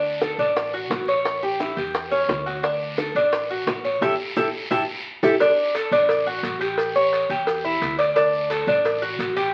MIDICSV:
0, 0, Header, 1, 4, 480
1, 0, Start_track
1, 0, Key_signature, 2, "major"
1, 0, Tempo, 345224
1, 1745, Time_signature, 4, 2, 24, 8
1, 13263, End_track
2, 0, Start_track
2, 0, Title_t, "Cuban tres"
2, 0, Program_c, 0, 25
2, 0, Note_on_c, 0, 62, 79
2, 287, Note_off_c, 0, 62, 0
2, 298, Note_on_c, 0, 69, 64
2, 533, Note_off_c, 0, 69, 0
2, 541, Note_on_c, 0, 62, 75
2, 1008, Note_off_c, 0, 62, 0
2, 1027, Note_on_c, 0, 66, 65
2, 1491, Note_off_c, 0, 66, 0
2, 1508, Note_on_c, 0, 73, 68
2, 1972, Note_off_c, 0, 73, 0
2, 1987, Note_on_c, 0, 67, 70
2, 2219, Note_off_c, 0, 67, 0
2, 2227, Note_on_c, 0, 64, 65
2, 2459, Note_off_c, 0, 64, 0
2, 2459, Note_on_c, 0, 67, 62
2, 2928, Note_off_c, 0, 67, 0
2, 2940, Note_on_c, 0, 61, 77
2, 3409, Note_off_c, 0, 61, 0
2, 3425, Note_on_c, 0, 66, 68
2, 3658, Note_off_c, 0, 66, 0
2, 3659, Note_on_c, 0, 62, 80
2, 4128, Note_off_c, 0, 62, 0
2, 4146, Note_on_c, 0, 69, 60
2, 4379, Note_off_c, 0, 69, 0
2, 4393, Note_on_c, 0, 62, 81
2, 4856, Note_off_c, 0, 62, 0
2, 4873, Note_on_c, 0, 66, 65
2, 5336, Note_off_c, 0, 66, 0
2, 5350, Note_on_c, 0, 73, 71
2, 5581, Note_off_c, 0, 73, 0
2, 5590, Note_on_c, 0, 64, 95
2, 5594, Note_on_c, 0, 67, 99
2, 5601, Note_on_c, 0, 69, 83
2, 5744, Note_off_c, 0, 64, 0
2, 5744, Note_off_c, 0, 67, 0
2, 5745, Note_off_c, 0, 69, 0
2, 6070, Note_on_c, 0, 64, 90
2, 6076, Note_on_c, 0, 67, 79
2, 6082, Note_on_c, 0, 69, 80
2, 6224, Note_off_c, 0, 67, 0
2, 6225, Note_off_c, 0, 64, 0
2, 6225, Note_off_c, 0, 69, 0
2, 6545, Note_on_c, 0, 64, 93
2, 6556, Note_on_c, 0, 67, 92
2, 6560, Note_on_c, 0, 69, 85
2, 6703, Note_off_c, 0, 64, 0
2, 6704, Note_off_c, 0, 67, 0
2, 6704, Note_off_c, 0, 69, 0
2, 7272, Note_on_c, 0, 69, 90
2, 7282, Note_on_c, 0, 67, 81
2, 7284, Note_on_c, 0, 64, 78
2, 7426, Note_off_c, 0, 64, 0
2, 7426, Note_off_c, 0, 69, 0
2, 7428, Note_off_c, 0, 67, 0
2, 7517, Note_on_c, 0, 62, 95
2, 7978, Note_off_c, 0, 62, 0
2, 7990, Note_on_c, 0, 69, 71
2, 8221, Note_off_c, 0, 69, 0
2, 8235, Note_on_c, 0, 62, 89
2, 8697, Note_off_c, 0, 62, 0
2, 8712, Note_on_c, 0, 66, 78
2, 9175, Note_off_c, 0, 66, 0
2, 9187, Note_on_c, 0, 67, 74
2, 9652, Note_off_c, 0, 67, 0
2, 9673, Note_on_c, 0, 73, 82
2, 10134, Note_off_c, 0, 73, 0
2, 10150, Note_on_c, 0, 67, 80
2, 10613, Note_off_c, 0, 67, 0
2, 10631, Note_on_c, 0, 64, 79
2, 11093, Note_off_c, 0, 64, 0
2, 11102, Note_on_c, 0, 74, 84
2, 11336, Note_off_c, 0, 74, 0
2, 11343, Note_on_c, 0, 62, 89
2, 11809, Note_off_c, 0, 62, 0
2, 11819, Note_on_c, 0, 69, 76
2, 12054, Note_off_c, 0, 69, 0
2, 12066, Note_on_c, 0, 62, 87
2, 12530, Note_off_c, 0, 62, 0
2, 12543, Note_on_c, 0, 66, 73
2, 13008, Note_off_c, 0, 66, 0
2, 13022, Note_on_c, 0, 67, 84
2, 13263, Note_off_c, 0, 67, 0
2, 13263, End_track
3, 0, Start_track
3, 0, Title_t, "Upright bass"
3, 0, Program_c, 1, 32
3, 0, Note_on_c, 1, 38, 81
3, 458, Note_off_c, 1, 38, 0
3, 531, Note_on_c, 1, 33, 80
3, 1207, Note_off_c, 1, 33, 0
3, 1254, Note_on_c, 1, 33, 88
3, 2380, Note_off_c, 1, 33, 0
3, 2456, Note_on_c, 1, 40, 86
3, 3130, Note_off_c, 1, 40, 0
3, 3178, Note_on_c, 1, 38, 92
3, 4303, Note_off_c, 1, 38, 0
3, 4376, Note_on_c, 1, 33, 80
3, 5051, Note_off_c, 1, 33, 0
3, 5097, Note_on_c, 1, 33, 88
3, 5549, Note_off_c, 1, 33, 0
3, 5579, Note_on_c, 1, 33, 95
3, 5761, Note_off_c, 1, 33, 0
3, 6068, Note_on_c, 1, 33, 91
3, 6246, Note_off_c, 1, 33, 0
3, 6543, Note_on_c, 1, 33, 92
3, 6724, Note_off_c, 1, 33, 0
3, 7268, Note_on_c, 1, 33, 92
3, 7446, Note_off_c, 1, 33, 0
3, 8221, Note_on_c, 1, 33, 88
3, 8893, Note_off_c, 1, 33, 0
3, 8941, Note_on_c, 1, 33, 94
3, 10063, Note_off_c, 1, 33, 0
3, 10142, Note_on_c, 1, 40, 90
3, 10812, Note_off_c, 1, 40, 0
3, 10865, Note_on_c, 1, 38, 100
3, 11983, Note_off_c, 1, 38, 0
3, 12055, Note_on_c, 1, 33, 91
3, 12728, Note_off_c, 1, 33, 0
3, 12775, Note_on_c, 1, 33, 89
3, 13263, Note_off_c, 1, 33, 0
3, 13263, End_track
4, 0, Start_track
4, 0, Title_t, "Drums"
4, 62, Note_on_c, 9, 70, 26
4, 201, Note_off_c, 9, 70, 0
4, 297, Note_on_c, 9, 70, 61
4, 299, Note_on_c, 9, 60, 51
4, 308, Note_on_c, 9, 73, 66
4, 436, Note_off_c, 9, 70, 0
4, 439, Note_off_c, 9, 60, 0
4, 447, Note_off_c, 9, 73, 0
4, 541, Note_on_c, 9, 70, 26
4, 552, Note_on_c, 9, 73, 69
4, 680, Note_off_c, 9, 70, 0
4, 691, Note_off_c, 9, 73, 0
4, 784, Note_on_c, 9, 74, 64
4, 785, Note_on_c, 9, 70, 65
4, 787, Note_on_c, 9, 60, 65
4, 923, Note_off_c, 9, 74, 0
4, 924, Note_off_c, 9, 70, 0
4, 926, Note_off_c, 9, 60, 0
4, 1023, Note_on_c, 9, 70, 28
4, 1162, Note_off_c, 9, 70, 0
4, 1261, Note_on_c, 9, 60, 63
4, 1261, Note_on_c, 9, 61, 73
4, 1261, Note_on_c, 9, 73, 62
4, 1262, Note_on_c, 9, 70, 66
4, 1400, Note_off_c, 9, 60, 0
4, 1400, Note_off_c, 9, 61, 0
4, 1400, Note_off_c, 9, 73, 0
4, 1401, Note_off_c, 9, 70, 0
4, 1495, Note_on_c, 9, 73, 71
4, 1505, Note_on_c, 9, 70, 26
4, 1634, Note_off_c, 9, 73, 0
4, 1644, Note_off_c, 9, 70, 0
4, 1741, Note_on_c, 9, 70, 66
4, 1742, Note_on_c, 9, 74, 62
4, 1743, Note_on_c, 9, 60, 68
4, 1880, Note_off_c, 9, 70, 0
4, 1881, Note_off_c, 9, 74, 0
4, 1882, Note_off_c, 9, 60, 0
4, 1984, Note_on_c, 9, 70, 26
4, 1987, Note_on_c, 9, 60, 31
4, 2123, Note_off_c, 9, 70, 0
4, 2126, Note_off_c, 9, 60, 0
4, 2219, Note_on_c, 9, 70, 65
4, 2227, Note_on_c, 9, 60, 54
4, 2227, Note_on_c, 9, 73, 73
4, 2358, Note_off_c, 9, 70, 0
4, 2366, Note_off_c, 9, 60, 0
4, 2366, Note_off_c, 9, 73, 0
4, 2464, Note_on_c, 9, 70, 29
4, 2467, Note_on_c, 9, 60, 33
4, 2467, Note_on_c, 9, 73, 65
4, 2603, Note_off_c, 9, 70, 0
4, 2606, Note_off_c, 9, 60, 0
4, 2606, Note_off_c, 9, 73, 0
4, 2701, Note_on_c, 9, 70, 64
4, 2707, Note_on_c, 9, 60, 69
4, 2708, Note_on_c, 9, 74, 69
4, 2840, Note_off_c, 9, 70, 0
4, 2846, Note_off_c, 9, 60, 0
4, 2847, Note_off_c, 9, 74, 0
4, 2944, Note_on_c, 9, 70, 28
4, 2950, Note_on_c, 9, 60, 32
4, 3083, Note_off_c, 9, 70, 0
4, 3089, Note_off_c, 9, 60, 0
4, 3182, Note_on_c, 9, 70, 65
4, 3187, Note_on_c, 9, 60, 64
4, 3187, Note_on_c, 9, 61, 73
4, 3188, Note_on_c, 9, 73, 65
4, 3321, Note_off_c, 9, 70, 0
4, 3326, Note_off_c, 9, 60, 0
4, 3326, Note_off_c, 9, 61, 0
4, 3327, Note_off_c, 9, 73, 0
4, 3420, Note_on_c, 9, 70, 28
4, 3425, Note_on_c, 9, 73, 65
4, 3559, Note_off_c, 9, 70, 0
4, 3564, Note_off_c, 9, 73, 0
4, 3660, Note_on_c, 9, 70, 57
4, 3663, Note_on_c, 9, 74, 58
4, 3668, Note_on_c, 9, 60, 62
4, 3799, Note_off_c, 9, 70, 0
4, 3802, Note_off_c, 9, 74, 0
4, 3807, Note_off_c, 9, 60, 0
4, 3904, Note_on_c, 9, 70, 27
4, 4043, Note_off_c, 9, 70, 0
4, 4138, Note_on_c, 9, 70, 66
4, 4144, Note_on_c, 9, 60, 56
4, 4145, Note_on_c, 9, 73, 73
4, 4277, Note_off_c, 9, 70, 0
4, 4283, Note_off_c, 9, 60, 0
4, 4284, Note_off_c, 9, 73, 0
4, 4381, Note_on_c, 9, 73, 69
4, 4382, Note_on_c, 9, 70, 27
4, 4520, Note_off_c, 9, 73, 0
4, 4521, Note_off_c, 9, 70, 0
4, 4617, Note_on_c, 9, 70, 69
4, 4623, Note_on_c, 9, 74, 74
4, 4626, Note_on_c, 9, 60, 70
4, 4756, Note_off_c, 9, 70, 0
4, 4762, Note_off_c, 9, 74, 0
4, 4765, Note_off_c, 9, 60, 0
4, 4862, Note_on_c, 9, 70, 28
4, 5001, Note_off_c, 9, 70, 0
4, 5103, Note_on_c, 9, 70, 72
4, 5106, Note_on_c, 9, 73, 65
4, 5107, Note_on_c, 9, 60, 68
4, 5107, Note_on_c, 9, 61, 77
4, 5242, Note_off_c, 9, 70, 0
4, 5245, Note_off_c, 9, 73, 0
4, 5246, Note_off_c, 9, 60, 0
4, 5246, Note_off_c, 9, 61, 0
4, 5346, Note_on_c, 9, 73, 67
4, 5347, Note_on_c, 9, 70, 27
4, 5485, Note_off_c, 9, 73, 0
4, 5486, Note_off_c, 9, 70, 0
4, 5588, Note_on_c, 9, 61, 95
4, 5588, Note_on_c, 9, 74, 85
4, 5589, Note_on_c, 9, 70, 78
4, 5727, Note_off_c, 9, 61, 0
4, 5727, Note_off_c, 9, 74, 0
4, 5728, Note_off_c, 9, 70, 0
4, 6065, Note_on_c, 9, 70, 89
4, 6071, Note_on_c, 9, 61, 97
4, 6072, Note_on_c, 9, 74, 98
4, 6204, Note_off_c, 9, 70, 0
4, 6210, Note_off_c, 9, 61, 0
4, 6211, Note_off_c, 9, 74, 0
4, 6543, Note_on_c, 9, 70, 89
4, 6554, Note_on_c, 9, 61, 100
4, 6682, Note_off_c, 9, 70, 0
4, 6693, Note_off_c, 9, 61, 0
4, 7269, Note_on_c, 9, 74, 105
4, 7274, Note_on_c, 9, 61, 90
4, 7274, Note_on_c, 9, 70, 95
4, 7408, Note_off_c, 9, 74, 0
4, 7413, Note_off_c, 9, 61, 0
4, 7413, Note_off_c, 9, 70, 0
4, 7513, Note_on_c, 9, 56, 111
4, 7514, Note_on_c, 9, 74, 73
4, 7515, Note_on_c, 9, 70, 64
4, 7652, Note_off_c, 9, 56, 0
4, 7653, Note_off_c, 9, 74, 0
4, 7654, Note_off_c, 9, 70, 0
4, 7761, Note_on_c, 9, 70, 34
4, 7900, Note_off_c, 9, 70, 0
4, 7991, Note_on_c, 9, 56, 73
4, 7996, Note_on_c, 9, 73, 75
4, 7997, Note_on_c, 9, 70, 73
4, 8130, Note_off_c, 9, 56, 0
4, 8135, Note_off_c, 9, 73, 0
4, 8136, Note_off_c, 9, 70, 0
4, 8239, Note_on_c, 9, 73, 74
4, 8242, Note_on_c, 9, 70, 29
4, 8378, Note_off_c, 9, 73, 0
4, 8381, Note_off_c, 9, 70, 0
4, 8465, Note_on_c, 9, 56, 108
4, 8474, Note_on_c, 9, 74, 80
4, 8483, Note_on_c, 9, 70, 68
4, 8604, Note_off_c, 9, 56, 0
4, 8613, Note_off_c, 9, 74, 0
4, 8622, Note_off_c, 9, 70, 0
4, 8718, Note_on_c, 9, 70, 29
4, 8857, Note_off_c, 9, 70, 0
4, 8946, Note_on_c, 9, 56, 74
4, 8952, Note_on_c, 9, 70, 74
4, 8953, Note_on_c, 9, 73, 65
4, 9085, Note_off_c, 9, 56, 0
4, 9091, Note_off_c, 9, 70, 0
4, 9092, Note_off_c, 9, 73, 0
4, 9191, Note_on_c, 9, 70, 31
4, 9193, Note_on_c, 9, 73, 70
4, 9330, Note_off_c, 9, 70, 0
4, 9333, Note_off_c, 9, 73, 0
4, 9423, Note_on_c, 9, 56, 107
4, 9433, Note_on_c, 9, 70, 67
4, 9437, Note_on_c, 9, 74, 68
4, 9562, Note_off_c, 9, 56, 0
4, 9572, Note_off_c, 9, 70, 0
4, 9576, Note_off_c, 9, 74, 0
4, 9678, Note_on_c, 9, 70, 34
4, 9817, Note_off_c, 9, 70, 0
4, 9909, Note_on_c, 9, 56, 74
4, 9911, Note_on_c, 9, 70, 67
4, 9916, Note_on_c, 9, 73, 76
4, 10048, Note_off_c, 9, 56, 0
4, 10051, Note_off_c, 9, 70, 0
4, 10055, Note_off_c, 9, 73, 0
4, 10146, Note_on_c, 9, 73, 82
4, 10153, Note_on_c, 9, 70, 32
4, 10285, Note_off_c, 9, 73, 0
4, 10292, Note_off_c, 9, 70, 0
4, 10386, Note_on_c, 9, 56, 107
4, 10392, Note_on_c, 9, 74, 69
4, 10393, Note_on_c, 9, 70, 67
4, 10525, Note_off_c, 9, 56, 0
4, 10531, Note_off_c, 9, 74, 0
4, 10532, Note_off_c, 9, 70, 0
4, 10639, Note_on_c, 9, 70, 31
4, 10778, Note_off_c, 9, 70, 0
4, 10864, Note_on_c, 9, 73, 76
4, 10871, Note_on_c, 9, 56, 64
4, 10876, Note_on_c, 9, 70, 70
4, 11003, Note_off_c, 9, 73, 0
4, 11010, Note_off_c, 9, 56, 0
4, 11015, Note_off_c, 9, 70, 0
4, 11103, Note_on_c, 9, 73, 76
4, 11111, Note_on_c, 9, 56, 79
4, 11112, Note_on_c, 9, 70, 32
4, 11242, Note_off_c, 9, 73, 0
4, 11250, Note_off_c, 9, 56, 0
4, 11251, Note_off_c, 9, 70, 0
4, 11339, Note_on_c, 9, 74, 66
4, 11347, Note_on_c, 9, 70, 66
4, 11348, Note_on_c, 9, 56, 109
4, 11478, Note_off_c, 9, 74, 0
4, 11486, Note_off_c, 9, 70, 0
4, 11487, Note_off_c, 9, 56, 0
4, 11589, Note_on_c, 9, 70, 34
4, 11728, Note_off_c, 9, 70, 0
4, 11818, Note_on_c, 9, 73, 79
4, 11822, Note_on_c, 9, 70, 74
4, 11827, Note_on_c, 9, 56, 67
4, 11957, Note_off_c, 9, 73, 0
4, 11961, Note_off_c, 9, 70, 0
4, 11966, Note_off_c, 9, 56, 0
4, 12061, Note_on_c, 9, 73, 74
4, 12067, Note_on_c, 9, 70, 33
4, 12200, Note_off_c, 9, 73, 0
4, 12206, Note_off_c, 9, 70, 0
4, 12301, Note_on_c, 9, 70, 66
4, 12301, Note_on_c, 9, 74, 71
4, 12310, Note_on_c, 9, 56, 108
4, 12440, Note_off_c, 9, 70, 0
4, 12440, Note_off_c, 9, 74, 0
4, 12449, Note_off_c, 9, 56, 0
4, 12544, Note_on_c, 9, 70, 31
4, 12683, Note_off_c, 9, 70, 0
4, 12778, Note_on_c, 9, 73, 74
4, 12784, Note_on_c, 9, 70, 71
4, 12787, Note_on_c, 9, 56, 71
4, 12917, Note_off_c, 9, 73, 0
4, 12923, Note_off_c, 9, 70, 0
4, 12926, Note_off_c, 9, 56, 0
4, 13022, Note_on_c, 9, 73, 81
4, 13026, Note_on_c, 9, 70, 30
4, 13161, Note_off_c, 9, 73, 0
4, 13165, Note_off_c, 9, 70, 0
4, 13263, End_track
0, 0, End_of_file